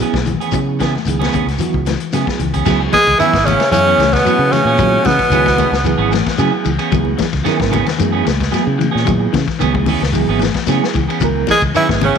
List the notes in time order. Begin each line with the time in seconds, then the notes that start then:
0.00 E3 F#3 B3 C#4 E4 G#4, closed hi-hat
0.13 B1, muted clean electric guitar stroke, kick, snare, high conga
0.25 E3, muted clean electric guitar stroke, closed hi-hat, high conga, low conga, shekere
0.40 B3 C#4 G#4, closed hi-hat
0.52 C#3 F#3 B3 E4 G#4, kick, closed hi-hat, shekere
0.67 muted clean electric guitar stroke
0.79 E3 B3 G#4, muted clean electric guitar stroke, kick, snare, closed hi-hat, shekere
0.93 muted clean electric guitar stroke, snare, high conga
1.05 C#2 D#3 F#3 B3 E4 G#4, closed hi-hat, shekere
1.19 E3 B3 C#4 G#4, snare, high conga
1.32 C#3 E3 B3 C#4 G#4, kick, closed hi-hat, high conga, low conga, shekere
1.47 C#2, muted clean electric guitar stroke, snare, closed hi-hat
1.58 E3 F#3 B3 E4 F#4, muted clean electric guitar stroke, closed hi-hat, low conga, shekere
1.73 C#2, muted clean electric guitar stroke, kick
1.85 E3, muted clean electric guitar stroke, snare, closed hi-hat, high conga, shekere
2.00 closed hi-hat
2.12 C#3 E3 F#3 B3 C#4 E4 G#4, snare, closed hi-hat, high conga, shekere
2.26 muted clean electric guitar stroke, muted fingered electric bass stroke, kick, snare
2.39 C#2 E3, muted clean electric guitar stroke, closed hi-hat, low conga, shekere
2.53 B3 C#4 G#4, kick, closed hi-hat, low conga
2.65 C#2 E3 F#3 B3 C#4 E4 G#4, kick, snare, crash, low conga, shekere
2.81 muted clean electric guitar stroke
2.92 E3 G#3 G#4, kick, snare, ride bell, high conga, shekere
3.07 C#2, kick, ride bell
3.17 D#3 E3 F#3 B3 C#4 E4 G#4, muted fingered electric bass stroke, ride bell, shekere
3.22 G#4
3.32 G#1, muted clean electric guitar stroke, kick, snare
3.44 C#3 E3 B3 C#4 G#4, snare, ride bell, high conga, low conga, shekere
3.60 muted clean electric guitar stroke, snare, ride bell
3.71 F#2 C#3 E3 F#3 B3 C#4 E4 G#4, muted clean electric guitar stroke, ride bell, shekere
3.87 E3 B3 C#4 G#4
3.98 C#2 E3, muted clean electric guitar stroke, snare, ride bell, high conga, shekere
4.13 B2 B3, muted clean electric guitar stroke, kick, snare, ride bell
4.25 E3 F#3 B3 C#4 E4 F#4 G#4, ride bell, high conga, shekere
4.39 C#3, muted clean electric guitar stroke
4.50 C#3 E3 C#4, snare, ride bell, high conga, shekere
4.65 A#2 B3 C#4 G#4
4.78 F#3 B3 E4 F#4, kick, ride bell, low conga, shekere
4.93 muted clean electric guitar stroke, high conga
5.03 B2 C#3 E3 B3, kick, snare, ride bell, high conga, shekere
5.19 muted fingered electric bass stroke, kick, snare, ride bell
5.30 C#2 D#3 E3 F#3 B3 C#4 E4 G#4, ride bell, shekere
5.34 F#4
5.46 muted clean electric guitar stroke, kick, snare
5.57 C#3 E3 B3 C#4 G#4, ride bell, high conga, low conga, shekere
5.71 C#2, muted clean electric guitar stroke, snare
5.84 E3 F#3 B3 E4 G#4, muted clean electric guitar stroke, ride bell, shekere
5.98 G#1 E3 B3 C#4 G#4
6.11 E3, muted clean electric guitar stroke, snare, ride bell, high conga, shekere
6.25 muted clean electric guitar stroke, kick, snare, ride bell
6.38 C#3 E3 F#3 B3 C#4 E4 G#4, ride bell, high conga, shekere
6.52 muted clean electric guitar stroke
6.65 C#2 E3, muted clean electric guitar stroke, ride bell, shekere
6.79 B3 C#4 G#4, ride bell
6.92 C#2 F#3 B3 E4 G#4, kick, ride bell, low conga, shekere
7.04 muted clean electric guitar stroke, high conga
7.18 E3, kick, snare, ride bell, high conga, shekere
7.33 C#2, kick, snare, ride bell
7.44 D#3 E3 F#3 B3 C#4 E4 G#4, snare, ride bell, shekere
7.48 A#4
7.58 G#1, muted clean electric guitar stroke, kick, snare, high conga
7.71 C#3 E3 B3 C#4 G#4, ride bell, high conga, low conga, shekere
7.86 muted clean electric guitar stroke, snare, ride bell, low conga
7.99 F#2 E3 F#3 B3 E4 G#4, muted clean electric guitar stroke, ride bell, high conga, shekere
8.12 E3 B3 C#4 G#4
8.25 C#2, muted clean electric guitar stroke, snare, ride bell, high conga, shekere
8.38 muted clean electric guitar stroke, kick, snare, ride bell
8.51 E3 F#3 B3 G#4, muted clean electric guitar stroke, ride bell, high conga, shekere
8.55 F#3 B3 E4 G#4, snare
8.64 C#3, muted clean electric guitar stroke
8.77 E3, muted clean electric guitar stroke, ride bell, high conga, shekere
8.91 A#2 B3 C#4 G#4
8.96 snare
9.05 F#3 B3 E4 G#4, kick, ride bell, low conga, shekere
9.20 muted clean electric guitar stroke
9.33 C#3 E3, kick, snare, ride bell, high conga, shekere
9.47 muted fingered electric bass stroke, kick, snare, ride bell
9.59 C#2 D#3 E3 F#3 B3 C#4 E4 G#4, ride bell, shekere
9.74 muted clean electric guitar stroke, kick, high conga
9.86 C#3 E3 B3 C#4 G#4, open hi-hat, high conga, low conga, shekere
10.01 C#2, muted clean electric guitar stroke, snare, low conga
10.12 E3 F#3 B3 E4 G#4, muted clean electric guitar stroke, ride bell, shekere
10.27 G#1 E3 B3 C#4 G#4
10.39 E3, muted clean electric guitar stroke, snare, ride bell, high conga, shekere
10.54 muted clean electric guitar stroke, kick, snare, ride bell
10.66 C#3 E3 F#3 B3 C#4 E4 G#4, snare, ride bell, high conga, shekere
10.84 muted clean electric guitar stroke, snare
10.93 C#2 E3, muted clean electric guitar stroke, kick, ride bell, shekere
11.09 B3 C#4 G#4, ride bell
11.20 C#2 F#3 B3 E4 A#4, kick, ride bell, low conga, shekere
11.36 muted clean electric guitar stroke
11.47 E3 G#3, kick, snare, ride bell, high conga, shekere
11.51 G#4
11.61 C#2, kick, ride bell
11.75 D#3 E3 F#3 B3 C#4 E4 G#4 B4, muted fingered electric bass stroke, ride bell, shekere
11.89 G#1, muted clean electric guitar stroke, kick, snare, high conga
12.01 C#3 E3 B3 C#4 G#4, ride bell, high conga, low conga, shekere